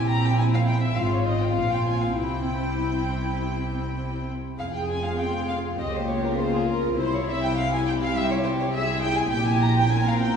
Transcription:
Already playing: double bass section A#1, cello section A#2, viola section C4 E4, violin section G4
0.09 violin section A#5
0.25 violin section G5
0.38 violin section E4 G#5
0.54 violin section F5
0.67 violin section G5
0.83 violin section E5
0.97 double bass section G#1, cello section G#2, viola section C4 F4, violin section F4 F5
1.13 violin section C#5
1.26 violin section D#5
1.42 violin section G5
1.56 double bass section A#1, cello section A#2, viola section C4 F4, violin section F5
1.72 violin section G5
1.86 violin section G#5
2.02 violin section F5
2.16 double bass section C2, cello section C3, viola section C4 E4, violin section E4 G5
4.59 double bass section F1, cello section F2, viola section C4 G#4, violin section G#4 F5
4.74 violin section G5
4.89 violin section G#5
5.04 violin section F5
5.18 violin section F4 G5
5.48 violin section F5
5.78 double bass section C#2, cello section C#3, viola section A#3 F4, violin section G4 D#5
5.94 violin section C5
6.08 violin section C#5
6.24 violin section A#4
6.38 violin section F4 C5
6.54 violin section G#4
6.68 violin section A#4
6.97 double bass section C2, cello section C3, viola section G3 E4, violin section E4 C5
7.14 violin section C#5
7.28 violin section E5
7.43 violin section G5
7.57 violin section F5
7.73 violin section G#5
7.86 violin section G5
8.02 violin section F5
8.15 violin section G4 E5
8.30 violin section C#5
8.43 violin section C5
8.60 violin section C#5
8.72 violin section G#4 E5
9.02 violin section G5
9.17 violin section G#5
9.31 double bass section A#1, cello section A#2, viola section C4, violin section G4 G5
9.47 violin section G#5
9.62 violin section A#5
9.77 violin section G5
9.90 violin section A#4 G#5
10.06 violin section F5
10.20 violin section G5

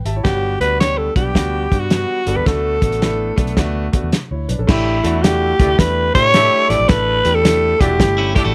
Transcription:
0.05 fingered electric bass G#1, grand piano G4 E5 A5, closed hi-hat
0.16 grand piano E4 C#5
0.24 fingered electric bass G1, grand piano G3 B3 D4 F#4, alto saxophone G4, kick, snare, closed hi-hat
0.60 fingered electric bass D2, grand piano G3 B3 D4 F#4, alto saxophone B4, closed hi-hat
0.80 grand piano G3 B3 D4 G4, alto saxophone C#5, snare, closed hi-hat
0.98 alto saxophone A4
1.15 fingered electric bass B1, grand piano G3 B3 D4 G4, alto saxophone G4, kick, closed hi-hat
1.35 fingered electric bass D2, grand piano G3 B3 D4 F#4, kick, snare, closed hi-hat
1.72 fingered electric bass G2, grand piano G3 B3 D4 F#4, kick, closed hi-hat
1.80 alto saxophone F#4
1.90 grand piano G3 B3 D4 F#4, snare, closed hi-hat
2.26 fingered electric bass G1, grand piano G3 B3 D4 A4, closed hi-hat
2.36 fingered electric bass D#2, alto saxophone B4
2.46 fingered electric bass D2, grand piano A3 B3 D4 F#4, alto saxophone A4, kick, snare, closed hi-hat
2.81 fingered electric bass A1, grand piano A3 B3 D4 F#4, kick, closed hi-hat
2.92 closed hi-hat
3.01 grand piano A3 B3 D4 E4, snare, closed hi-hat
3.36 fingered electric bass B1, grand piano A3 B3 D4 A4, kick, closed hi-hat
3.47 closed hi-hat
3.57 fingered electric bass D2, grand piano A3 B3 D4 F#4, kick, snare, closed hi-hat
3.92 grand piano A3 B3 D4 F#4, kick, closed hi-hat
4.03 fingered electric bass E2
4.12 snare, closed hi-hat
4.31 fingered electric bass D2, grand piano E4 C#5
4.49 fingered electric bass B1, grand piano D4 B4, closed hi-hat
4.59 fingered electric bass A#1, grand piano C#4 A4
4.67 fingered electric bass A1, grand piano A3 D4 E4 G4, alto saxophone E4, kick, snare, crash
5.03 fingered electric bass E2, grand piano A3 D4 E4 F#4, closed hi-hat
5.23 grand piano A3 D4 E4 F#4, alto saxophone G4, snare, closed hi-hat
5.59 fingered electric bass D2, grand piano A3 D4 E4 G4, horn section D4 G4 A4 D5, kick, closed hi-hat
5.78 fingered electric bass E2, grand piano A3 D4 E4 G4, alto saxophone B4, kick, snare, closed hi-hat
6.14 fingered electric bass A2, grand piano A3 D4 E4 G4, horn section E4 G4 A4 E5, alto saxophone C#5, kick, closed hi-hat
6.33 grand piano A3 D4 E4 G4, horn section E4 G4 A4 E5, snare, closed hi-hat
6.68 fingered electric bass A1, grand piano A3 D4 E4 G4, alto saxophone D5, snare, closed hi-hat
6.79 fingered electric bass A#1
6.88 fingered electric bass A1, grand piano A3 D4 E4 A4, alto saxophone B4, kick, snare, closed hi-hat
7.24 fingered electric bass E2, grand piano A3 D4 E4 G4, closed hi-hat
7.35 alto saxophone A4
7.43 grand piano A3 D4 E4 G4, snare, closed hi-hat
7.78 fingered electric bass E1, grand piano A3 D4 E4 F#4, horn section D4 G4 A4 D5, alto saxophone G4, kick, closed hi-hat
7.99 fingered electric bass G1, grand piano A3 D4 E4 G4, kick, snare, closed hi-hat
8.18 clean electric guitar C#4 E4
8.35 grand piano A3 D4 E4 G4, horn section D4 G4 A4 D5, clean electric guitar E4 G4, kick, closed hi-hat
8.45 fingered electric bass A1, clean electric guitar F#4 A4

